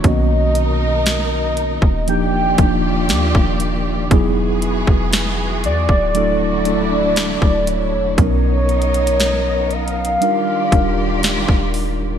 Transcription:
<<
  \new Staff \with { instrumentName = "Soft synth lead" } { \time 4/4 \key b \major \tempo 4 = 59 dis''2 g''4. r8 | r4. d''2 cis''8~ | cis''4. f''2 r8 | }
  \new Staff \with { instrumentName = "String section" } { \time 4/4 \key b \major <b, dis' ais'>2 <dis eis' g' d''>2 | <e b fis' gis'>2 <d d' e'>2 | <b dis' ais'>2 <dis eis' g' d''>2 | }
  \new Staff \with { instrumentName = "Tine electric piano" } { \time 4/4 \key b \major <dis ais b cis' fis'>2 <eis ais d' dis' g'>8 <eis ais d' dis' eis'>4. | <fis b dis' e' gis'>2 <fis a d' e' a'>8 <fis a d' e' a'>4. | <fis b cis' dis' ais'>2 <g d' dis' eis' ais'>8 <g d' dis' eis' ais'>4. | }
  \new Staff \with { instrumentName = "808-style bass" } { \clef bass \time 4/4 \key b \major b,,4.~ b,,16 dis,,8. dis,,8 dis,16 dis,,8. | e,,8. e,,8. e,16 d,,4. d,,8 e,,16 | b,,2 r8 dis,,8. dis,,8. | }
  \new DrumStaff \with { instrumentName = "Drums" } \drummode { \time 4/4 <hh bd>8 hh8 <hh sn>8 hh16 bd16 hh8 <hh bd>8 <hh sn>16 bd16 hh8 | <hh bd>8 hh16 bd16 <hh sn>8 hh16 bd16 hh8 hh8 <hh sn>16 bd16 hh8 | <hh bd>8 hh32 hh32 hh32 hh32 \tuplet 3/2 { <hh sn>16 r16 r16 hh16 hh16 hh16 } hh8 <hh bd>8 <hh sn>16 bd16 hho8 | }
>>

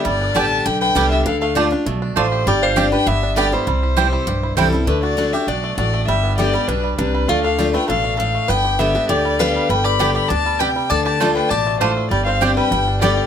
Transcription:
<<
  \new Staff \with { instrumentName = "Fiddle" } { \time 4/4 \key g \mixolydian \tempo 4 = 199 d''4 a''4 g''8 g''4 e''8 | f''8 f''4 r4. c''4 | d''8 f''4 g''8 e''4 d''8 c''8~ | c''2. a'4 |
b'8 d''4 e''8 d''4 d''4 | e''4 d''4 b'4 b'4 | d''8 f''4 g''8 f''4 f''4 | g''4 e''4 d''4 f''4 |
g''8 b''4 b''8 a''4 g''4 | a''8 a''4 g''8 a''4 c''4 | d''8 f''4 g''4. d''4 | }
  \new Staff \with { instrumentName = "Mandolin" } { \time 4/4 \key g \mixolydian r4 <b g' d'' g''>8 r4. <b g' d'' g''>8 r8 | r4 <a f' d'' a''>8 r4. <a f' d'' a''>8 r8 | r4 <c' g' d'' g''>8 r4. <b g' d'' g''>8 r8 | r4 <c' e' c'' g''>8 r4. <c' e' c'' g''>8 r8 |
r1 | r1 | r1 | r1 |
r4 <b g' d'' g''>8 r4. <b g' d'' g''>8 r8 | r4 <a f' d'' a''>8 r4. <a f' d'' a''>8 r8 | r4 <c' g' d'' g''>8 r4. <b g' d'' g''>8 r8 | }
  \new Staff \with { instrumentName = "Resonator guitar played with a steel bar" } { \time 4/4 \key g \mixolydian g'4 d''4 b'8 b'4 g'8 | a'8 a'4 r4. f'4 | g'8 c''4 b'8 g'4 g'8 e'8~ | e'2. c'4 |
d'8 fis'4 g'8 fis'4 fis'4 | g'4 g'4 d'4 d'4 | f'8 a'4 b'8 a'4 a'4 | b'4 g'4 g'4 b'4 |
b'8 d''4 d''8 d''4 b'4 | d''8 d''4 b'8 d''4 f'4 | g'8 c''4 b'4. g'4 | }
  \new Staff \with { instrumentName = "Five-string banjo" } { \time 4/4 \key g \mixolydian <g b g'>8 d'8 g'8 d'8 g'8 d'8 g8 d'8 | d'8 a8 g'8 d'8 a8 d'8 a8 g'8 | g8 d'8 g'8 d'8 b8 d'8 b8 g8 | g8 e'8 g'8 e'8 g'8 e'8 g8 e'8 |
a8 d'8 d'8 d'8 d'8 a8 d'8 a8 | g8 b8 g'8 g8 d'8 g8 d'8 g8 | a8 d'8 g'8 a8 d'8 a8 d'8 a8 | b8 g'8 b8 d'8 g'8 g8 d'8 g8 |
g8 g'8 d'8 g'8 d'8 g8 g'8 g8 | d'8 g'8 d'8 d'8 g'8 a8 d'8 a8 | g8 c'8 g'8 g8 g8 d'8 b8 g'8 | }
  \new Staff \with { instrumentName = "Steel-string acoustic guitar" } { \clef bass \time 4/4 \key g \mixolydian << { r4 <d g b g'>4 r4 <d g b g'>4 | r4 <d a d' f'>8 <d' f'>8 r2 | r4 <g c' d' g'>8 <d' g'>8 r4 <d g b g'>8 <b g'>8 | r4 <e g c' e'>4 r4 <e g c' e'>8 <c' e'>8 |
r4 <d a d' fis'>8 <d' fis'>8 r2 | r4 <d g b g'>8 <b g'>8 r2 | r4 <d a d' f'>8 <d' f'>8 r2 | r4 <d g b g'>8 <b g'>8 r4 <d g b g'>4 |
r4 <d g b g'>4 r2 | r4 <d a d' f'>4 r2 | r4 <g c' d' g'>4 r4 <d g b g'>4 | } \\ { g,2 d2 | d2 b,4 a,4 | g,2 g,2 | c2 g,2 |
d2 b,4 a,4 | g,2 b,4 c4 | d2 b,4 a,4 | g,2 d2 |
g,2 b,4 c4 | d2 b,4 a,4 | g,2 g,2 | } >> }
  \new Staff \with { instrumentName = "Upright bass" } { \clef bass \time 4/4 \key g \mixolydian g,,4 a,,4 b,,4 c,4 | d,2 b,,4 a,,4 | g,,2 g,,2 | c,2 b,,4 c,4 |
d,2 b,,4 a,,4 | g,,2 b,,4 c,4 | d,2 a,,2 | g,,2 d,2 |
g,,2 d,2 | d,2 a,,2 | g,,2 g,,2 | }
>>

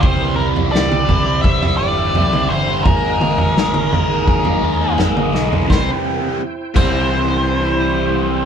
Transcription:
<<
  \new Staff \with { instrumentName = "Tonewheel organ" } { \time 4/4 \key c \mixolydian \tempo 4 = 85 <g' e'' c'''>1 | <aes' ees'' bes''>1 | <e' c'' g''>1 | }
  \new Staff \with { instrumentName = "Lead electric guitar" } { \time 4/4 \key c \mixolydian c''8 bes'8 d''4 e''8 d''4 c''8 | bes'2. r4 | c''8 r4 c''2~ c''8 | }
  \new Staff \with { instrumentName = "Overdriven electric guitar" } { \time 4/4 \key c \mixolydian <c e g c' e'>8 <e g c' e'>8 <c e g c' e'>8 <e g c' e'>16 <g c' e'>8 <g c' e'>16 <e g c' e'>16 <g c' e'>16 <c e g c' e'>8 <e g c' e'>16 <g c' e'>16 | <aes bes ees' aes'>8 <aes bes ees' aes'>8 <aes bes ees' aes'>8 <aes bes ees' aes'>16 <bes ees' aes'>8 <bes ees' aes'>16 <aes bes ees' aes'>16 <bes ees' aes'>16 <aes bes ees' aes'>8 <aes bes ees' aes'>16 <bes ees' aes'>16 | <c e g c' e'>16 r4 r16 <c e g c' e'>2~ <c e g c' e'>8 | }
  \new Staff \with { instrumentName = "Picked electric bass" } { \clef bass \time 4/4 \key c \mixolydian c,8 c,8 c,8 c,8 c,8 g,,8 c,8 g,,8 | aes,,8 aes,,8 aes,,8 aes,,8 aes,,8 ees,8 aes,,8 b,,8 | c,8 r4 c,2~ c,8 | }
  \new DrumStaff \with { instrumentName = "Drums" } \drummode { \time 4/4 <bd tomfh>8. tomfh16 sn16 toml16 <bd tomfh>8 bd16 tomfh8. tomfh16 toml8. | <bd tomfh>8 toml16 tomfh16 sn16 toml16 tomfh8 bd16 tomfh8. <sn tomfh>16 toml16 sn16 tomfh16 | <bd sn>4 r8 <cymc bd>8 r4 r4 | }
>>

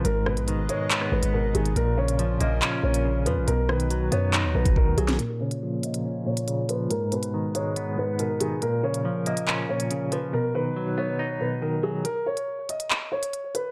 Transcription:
<<
  \new Staff \with { instrumentName = "Grand piano" } { \time 4/4 \key bes \phrygian \tempo 4 = 140 bes'8 ces''4 des''4 ces''8 bes'8 aes'8 | bes'8 des''4 ees''4 des''4 ces''8 | bes'8 b'4 des''4 b'8 bes'8 aes'8 | bes'8 des''4 ees''4 des''4 ces''8 |
bes'8 ces''4 des''4 ces''8 bes'8 aes'8 | bes'8 des''4 ees''4 des''4 ces''8 | bes'8 b'4 des''4 b'8 bes'8 aes'8 | bes'8 des''4 ees''4 des''4 ces''8 | }
  \new Staff \with { instrumentName = "Analog synth pad" } { \time 4/4 \key bes \phrygian <aes aes' ces'' ees''>1 | <des' f' bes'>1 | <dis' fis' b'>1 | <bes, bes f' des''>1 |
<aes, aes ees' ces''>1 | <bes, f des' bes'>1 | <b, fis dis' b'>1 | r1 | }
  \new Staff \with { instrumentName = "Clean electric guitar" } { \clef bass \time 4/4 \key bes \phrygian aes,8 ces8 ees8 aes8 ces'8 aes,8 ces8 ees8 | bes,8 des8 f8 bes8 des'8 bes,8 des8 f8 | b,8 dis8 fis8 b8 dis'8 b,8 dis8 fis8 | bes,8 des8 f8 bes8 des'8 bes,8 des8 f8 |
aes,8 ces8 ees8 aes8 ces'8 aes,8 ces8 ees8 | bes,8 des8 f8 bes8 des'8 bes,8 des8 f8 | b,8 dis8 fis8 b8 dis'8 b,8 dis8 fis8 | r1 | }
  \new Staff \with { instrumentName = "808-style bass" } { \clef bass \time 4/4 \key bes \phrygian aes,,8. bes,,16. aes,,16. r4 aes,,16 aes,,8. aes,,8 | bes,,4. bes,,8 r8 bes,,4 f,16 bes,,16 | b,,4. fis,8. dis,16 b,,8. dis,16 b,,8 | r1 |
r1 | r1 | r1 | r1 | }
  \new DrumStaff \with { instrumentName = "Drums" } \drummode { \time 4/4 hh8 ss16 hh16 hh8 hh8 <hc hh>16 ss8 hh16 r8 hh16 hh16 | hh8. hh16 hh8 hh8 <hc hh>8. hh16 r8 hh8 | hh8 ss16 hh16 hh8 hh8 <hc hh>8. <hh bd>16 bd8 hh16 <hh sn>16 | hh8. hh16 r8 hh16 hh16 r8. hh16 hh8 hh8 |
hh8 hh16 hh16 r8 hh8 hh4 hh8 hh8 | hh8. hh16 r8 hh16 hh16 hc8. hh16 hh8 hh8 | r4 r4 r4 r4 | hh8. hh16 r8 hh16 hh16 hc8. hh16 hh8 hh8 | }
>>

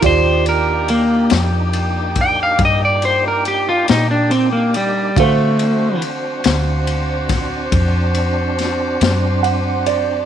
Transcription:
<<
  \new Staff \with { instrumentName = "Grand piano" } { \time 12/8 \key ees \lydian \tempo 4. = 47 << { r1. | r1 r4 fis''8 d''8 | } \\ { <f' g' d''>1. | <fis' c'' eis''>1. | } >> }
  \new Staff \with { instrumentName = "Horn section" } { \time 12/8 \key ees \lydian <d'' g''>1. | <fis' c''>1. | }
  \new Staff \with { instrumentName = "Clean electric guitar" } { \time 12/8 \key ees \lydian c''8 bes'8 bes8 r4 g''16 f''16 ees''16 d''16 c''16 bes'16 g'16 f'16 ees'16 d'16 c'16 bes16 g8 | a4 r1 r4 | }
  \new Staff \with { instrumentName = "Tonewheel organ" } { \time 12/8 \key ees \lydian <bes d' ees' g'>1. | <c' d'>1. | }
  \new Staff \with { instrumentName = "Fingered electric bass" } { \clef bass \time 12/8 \key ees \lydian ees,4. f,4. g,4. bes,4. | d4. d,4. eis,4. fis,4. | }
  \new DrumStaff \with { instrumentName = "Drums" } \drummode { \time 12/8 <bd cymr>8 cymr8 cymr8 <cymr sn>8 cymr8 <bd cymr>8 <bd cymr>8 cymr8 cymr8 <cymr sn>8 cymr8 cymr8 | <bd cymr>8 cymr8 cymr8 <cymr sn>8 cymr8 <bd cymr sn>8 <bd cymr>8 cymr8 <cymr sn>8 <cymr sn>8 cymr8 cymr8 | }
>>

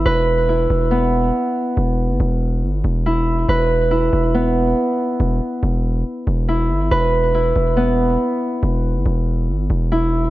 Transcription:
<<
  \new Staff \with { instrumentName = "Harp" } { \time 4/4 \key c \lydian \tempo 4 = 140 b'4 e'4 b2~ | b2. e'4 | b'4 e'4 b2~ | b2. e'4 |
b'4 e'4 b2~ | b2. e'4 | }
  \new Staff \with { instrumentName = "808-style bass" } { \clef bass \time 4/4 \key c \lydian e,,4. e,,4. r4 | e,,8. fis,,16 e,,4 g,,8 e,,4. | e,,4. e,,4. r4 | e,,8 r8 e,,4 r8 e,,4 g,,8 |
e,,4. e,,4. r4 | e,,8. fis,,16 e,,4 g,,8 e,,4. | }
>>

